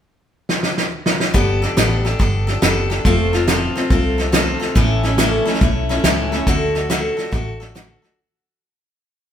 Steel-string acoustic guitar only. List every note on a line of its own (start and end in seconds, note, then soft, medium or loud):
1.34 1.62 G3 medium
1.34 1.62 B3 medium
1.34 1.62 D4 medium
1.34 1.62 G4 loud
1.34 1.61 A4 medium
1.62 1.77 D4 soft
1.62 1.77 G4 medium
1.62 1.77 A4 medium
1.77 2.05 G3 medium
1.77 2.05 B3 medium
1.77 2.05 D4 medium
1.77 2.05 G4 medium
1.77 2.03 A4 medium
2.05 2.19 D4 soft
2.05 2.19 G4 soft
2.05 2.19 A4 medium
2.19 2.47 B3 medium
2.19 2.48 D4 medium
2.19 2.47 G4 medium
2.19 2.46 A4 medium
2.47 2.62 D4 soft
2.47 2.62 G4 medium
2.47 2.62 A4 medium
2.62 2.90 G3 medium
2.62 2.90 B3 medium
2.62 2.91 D4 medium
2.62 2.90 G4 medium
2.62 2.89 A4 medium
2.90 3.06 D4 soft
2.90 3.05 G4 soft
2.90 3.05 A4 soft
3.05 3.33 F3 medium
3.05 3.33 A3 medium
3.05 3.33 C4 medium
3.05 3.33 F4 medium
3.05 3.32 A4 medium
3.33 3.47 C4 soft
3.33 3.48 F4 medium
3.33 3.48 A4 medium
3.47 3.75 F3 medium
3.47 3.76 A3 medium
3.47 3.76 C4 medium
3.47 3.76 F4 medium
3.47 3.74 A4 medium
3.76 3.90 C4 soft
3.76 3.91 F4 medium
3.76 3.90 A4 medium
3.90 4.18 A3 medium
3.90 4.19 C4 medium
3.90 4.18 F4 medium
3.90 4.17 A4 medium
4.18 4.32 C4 soft
4.18 4.33 F4 soft
4.18 4.33 A4 medium
4.32 4.61 F3 medium
4.32 4.61 A3 medium
4.32 4.61 C4 medium
4.32 4.60 F4 medium
4.32 4.58 A4 medium
4.60 4.76 C4 soft
4.60 4.76 F4 soft
4.60 4.75 A4 medium
4.75 5.03 A2 medium
4.75 5.04 E3 medium
4.75 5.04 A3 medium
4.75 5.04 C#4 medium
4.75 5.03 E4 medium
4.75 5.02 A4 medium
5.03 5.18 A3 soft
5.03 5.18 C#4 soft
5.03 5.18 E4 medium
5.03 5.18 A4 soft
5.18 5.46 A2 medium
5.18 5.46 E3 medium
5.18 5.46 A3 medium
5.18 5.46 C#4 medium
5.18 5.45 E4 medium
5.18 5.44 A4 medium
5.45 5.60 A3 soft
5.45 5.60 C#4 soft
5.45 5.61 E4 soft
5.45 5.61 A4 medium
5.61 5.89 A3 medium
5.61 5.89 C#4 medium
5.61 5.89 E4 medium
5.61 5.88 A4 medium
5.89 6.04 A3 soft
5.89 6.04 C#4 soft
5.89 6.04 E4 medium
5.89 6.04 A4 medium
6.04 6.32 A2 medium
6.04 6.32 E3 medium
6.04 6.32 A3 medium
6.04 6.33 C#4 medium
6.04 6.32 E4 medium
6.04 6.31 A4 medium
6.32 6.46 A3 soft
6.32 6.48 C#4 soft
6.32 6.47 E4 soft
6.32 6.47 A4 soft
6.47 6.75 D3 medium
6.47 6.75 A3 medium
6.47 6.75 D4 medium
6.47 6.75 F#4 medium
6.47 6.74 A4 medium
6.75 6.90 D4 soft
6.75 6.90 F#4 soft
6.75 6.90 A4 soft
6.90 7.18 D3 medium
6.90 7.18 A3 medium
6.90 7.18 D4 medium
6.90 7.17 F#4 medium
6.90 7.16 A4 medium
7.17 7.31 D4 soft
7.17 7.32 F#4 medium
7.17 7.32 A4 medium
7.32 7.60 A3 medium
7.32 7.61 D4 medium
7.32 7.60 F#4 medium
7.32 7.59 A4 medium
7.60 7.74 D4 soft
7.60 7.75 F#4 soft
7.60 7.75 A4 medium
7.75 8.03 D3 medium
7.75 8.03 A3 medium
7.75 8.03 D4 medium
7.75 8.02 F#4 medium
7.75 8.01 A4 medium
8.02 8.19 D4 soft
8.02 8.18 F#4 soft
8.02 8.17 A4 soft